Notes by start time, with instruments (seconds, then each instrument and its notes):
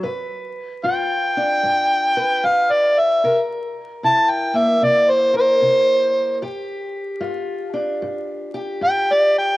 0.03 steel-string acoustic guitar G2 B4
0.83 steel-string acoustic guitar G2 F4, harmonica G5
1.37 steel-string acoustic guitar D4
1.63 steel-string acoustic guitar G2
2.17 steel-string acoustic guitar B4
2.44 steel-string acoustic guitar G2, harmonica F5
2.72 harmonica D5
2.99 harmonica E5
3.24 steel-string acoustic guitar C3 A#4
4.03 steel-string acoustic guitar C3 E4, harmonica A5
4.30 harmonica G5
4.54 steel-string acoustic guitar A#3, harmonica E5
4.82 steel-string acoustic guitar C3, harmonica D5
5.10 harmonica C5
5.34 steel-string acoustic guitar A#4, harmonica C5
5.62 steel-string acoustic guitar C3
6.42 steel-string acoustic guitar G2 G4
7.21 steel-string acoustic guitar G2 F4
7.74 steel-string acoustic guitar D4
8.02 steel-string acoustic guitar G2
8.54 steel-string acoustic guitar G4
8.81 steel-string acoustic guitar G2, harmonica G5
9.12 harmonica D5
9.38 harmonica G5